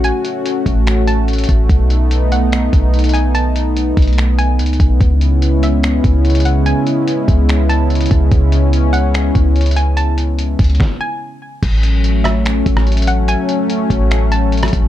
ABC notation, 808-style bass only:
X:1
M:4/4
L:1/16
Q:1/4=145
K:Alyd
V:1 name="808-style bass" clef=bass
A,,, z4 z A,,,8 A,,,2 | B,,,8- B,,,2 B,,,6- | B,,,6 B,,,6 C,,2 B,,,2 | C,,8- C,,2 C,,6- |
C,, z4 z C,,8 C,,2 | C,,8- C,,2 C,,6- | C,,6 C,,2 z8 | A,,,8- A,,,2 A,,,6- |
A,,, z4 z A,,,8 A,,,2 |]